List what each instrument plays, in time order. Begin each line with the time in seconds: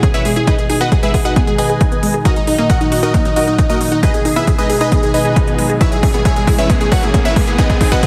Already playing: analog synth pad B2 E3 G#3 C#4 G#4
0.03 synth arpeggio sound C#4, grand piano G#4, supersaw synth G#4, kick, closed hi-hat
0.14 synth arpeggio sound B3, supersaw synth E4 B4 C#5 E5, grand piano E5, closed hi-hat
0.25 synth arpeggio sound G#3, grand piano G#4, supersaw synth G#4, open hi-hat
0.36 synth arpeggio sound E4, grand piano G#4, supersaw synth G#4, closed hi-hat
0.47 analog synth pad D#3 D#4, supersaw synth D#4 G#4 B4 D#5, synth arpeggio sound G#4, grand piano D#5, kick, closed hi-hat
0.58 grand piano G#4, supersaw synth G#4, closed hi-hat
0.69 synth arpeggio sound D#4, grand piano G#4, supersaw synth G#4, open hi-hat
0.81 synth arpeggio sound B3, supersaw synth F#4 B4 D#5 F#5, grand piano F#5, closed hi-hat
0.92 grand piano G#4, supersaw synth G#4, kick, closed hi-hat
1.03 synth arpeggio sound G#3, supersaw synth E4 G#4 B4 E5, grand piano E5, closed hi-hat
1.14 grand piano G#4, supersaw synth G#4, synth arpeggio sound G#4, kick, open hi-hat
1.25 synth arpeggio sound D#4, supersaw synth F#4 B4 D#5 F#5, grand piano F#5, closed hi-hat
1.36 synth arpeggio sound B3, grand piano G#4, supersaw synth G#4, kick, closed hi-hat
1.47 synth arpeggio sound G#3, grand piano G#4, supersaw synth G#4, closed hi-hat
1.58 supersaw synth G#4 B4 D#5 G#5, grand piano G#5, open hi-hat
1.70 synth arpeggio sound G#4, closed hi-hat
1.81 synth arpeggio sound D#4, kick, closed hi-hat
1.92 synth arpeggio sound B3, closed hi-hat
2.03 synth arpeggio sound G#3, open hi-hat
2.14 synth arpeggio sound G#4
2.25 analog synth pad A#2 F#3 D#4 F#4, supersaw synth D#4 F#4 A#4 D#5, synth arpeggio sound F#4, grand piano D#5, kick, closed hi-hat, riser
2.36 supersaw synth D#4, grand piano D#4, closed hi-hat
2.47 synth arpeggio sound D#4, supersaw synth D#4, grand piano D#4, open hi-hat
2.58 synth arpeggio sound A#3, grand piano D#4, supersaw synth D#4, closed hi-hat
2.70 supersaw synth F#4 A#4 D#5 F#5, grand piano F#5, kick, closed hi-hat
2.81 synth arpeggio sound F#3, grand piano D#4, supersaw synth D#4, closed hi-hat
2.92 grand piano D#4, supersaw synth D#4, synth arpeggio sound F#4, open hi-hat
3.03 synth arpeggio sound D#4, supersaw synth D#4 F#4 A#4 D#5, grand piano D#5, closed hi-hat
3.14 synth arpeggio sound A#3, grand piano D#4, supersaw synth D#4, kick, closed hi-hat
3.25 synth arpeggio sound F#3, grand piano D#4, supersaw synth D#4, closed hi-hat
3.36 supersaw synth D#4 F#4 A#4 D#5, grand piano D#5, open hi-hat
3.47 grand piano D#4, supersaw synth D#4, synth arpeggio sound F#4, closed hi-hat
3.58 synth arpeggio sound D#4, supersaw synth D#4, grand piano D#4, kick, closed hi-hat
3.70 synth arpeggio sound A#3, supersaw synth D#4 F#4 A#4 D#5, grand piano D#5, closed hi-hat
3.81 synth arpeggio sound F#3, supersaw synth D#4, grand piano D#4, open hi-hat
3.92 grand piano D#4, supersaw synth D#4, synth arpeggio sound F#4, closed hi-hat
4.03 analog synth pad B2 G#3 G#4, supersaw synth D#4 G#4 B4 D#5, synth arpeggio sound G#4, grand piano D#5, kick, closed hi-hat
4.14 grand piano G#4, supersaw synth G#4, closed hi-hat
4.25 synth arpeggio sound D#4, supersaw synth G#4, grand piano G#4, open hi-hat
4.36 synth arpeggio sound B3, supersaw synth E4 G#4 B4 E5, grand piano E5, closed hi-hat
4.47 supersaw synth G#4, grand piano G#4, kick, closed hi-hat
4.58 synth arpeggio sound G#3, supersaw synth D#4 G#4 B4 D#5, grand piano D#5, closed hi-hat
4.70 synth arpeggio sound G#4, supersaw synth G#4, grand piano G#4, open hi-hat
4.81 synth arpeggio sound D#4, supersaw synth D#4 G#4 B4 D#5, grand piano D#5, closed hi-hat
4.92 synth arpeggio sound B3, grand piano G#4, supersaw synth G#4, kick, closed hi-hat
5.03 synth arpeggio sound G#3, supersaw synth G#4, grand piano G#4, closed hi-hat
5.14 supersaw synth D#4 G#4 B4 D#5, grand piano D#5, open hi-hat
5.25 synth arpeggio sound G#4, closed hi-hat
5.36 synth arpeggio sound D#4, kick, closed hi-hat
5.47 synth arpeggio sound B3, closed hi-hat
5.59 synth arpeggio sound G#3, open hi-hat
5.70 synth arpeggio sound G#4, closed hi-hat
5.81 analog synth pad E3 C#4, supersaw synth E4 B4 C#5 E5, synth arpeggio sound E4, grand piano E5, kick, closed hi-hat
5.92 supersaw synth G#4, grand piano G#4, closed hi-hat
6.03 synth arpeggio sound C#4, supersaw synth G#4, grand piano G#4, kick, open hi-hat
6.14 synth arpeggio sound B3, supersaw synth G#4, grand piano G#4, closed hi-hat
6.25 supersaw synth G#4 C#5 E5 G#5, grand piano G#5, kick, closed hi-hat
6.36 synth arpeggio sound G#3, supersaw synth G#4, grand piano G#4, closed hi-hat
6.47 synth arpeggio sound E4, supersaw synth G#4, grand piano G#4, kick, open hi-hat
6.58 synth arpeggio sound C#4, supersaw synth E4 B4 C#5 E5, grand piano E5, closed hi-hat
6.70 synth arpeggio sound B3, supersaw synth G#4, grand piano G#4, kick, closed hi-hat
6.81 synth arpeggio sound G#3, supersaw synth G#4, grand piano G#4, closed hi-hat
6.92 supersaw synth F#4 B4 C#5 F#5, grand piano F#5, kick, open hi-hat
7.03 synth arpeggio sound E4, supersaw synth G#4, grand piano G#4, closed hi-hat
7.14 synth arpeggio sound C#4, supersaw synth G#4, grand piano G#4, kick, closed hi-hat
7.25 synth arpeggio sound B3, supersaw synth E4 B4 C#5 E5, grand piano E5, closed hi-hat
7.36 synth arpeggio sound G#3, supersaw synth G#4, grand piano G#4, kick, open hi-hat
7.47 synth arpeggio sound E4, supersaw synth G#4, grand piano G#4, closed hi-hat
7.58 analog synth pad D#3 D#4 G#4, supersaw synth D#4 G#4 B4 D#5, synth arpeggio sound G#4, grand piano D#5, kick, closed hi-hat
7.70 supersaw synth G#4, grand piano G#4, kick, closed hi-hat
7.81 synth arpeggio sound D#4, supersaw synth G#4, grand piano G#4, kick, open hi-hat
7.92 synth arpeggio sound B3, supersaw synth F#4 B4 D#5 F#5, grand piano F#5, kick, closed hi-hat
8.03 supersaw synth G#4, grand piano G#4, kick, closed hi-hat